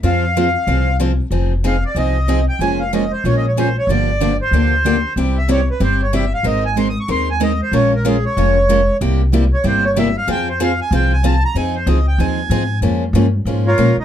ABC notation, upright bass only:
X:1
M:4/4
L:1/8
Q:"Swing" 1/4=188
K:Fm
V:1 name="Upright bass" clef=bass
F,,4 C,,4 | F,,,4 C,,4 | F,,,4 B,,,4 | G,,,4 =D,,4 |
C,,4 G,,,4 | A,,,4 E,,4 | B,,,4 F,,,4 | C,,4 G,,,4 |
F,,4 C,,4 | F,,2 D,,2 E,,2 A,,2 | F,,2 G,,2 A,,2 B,, z |]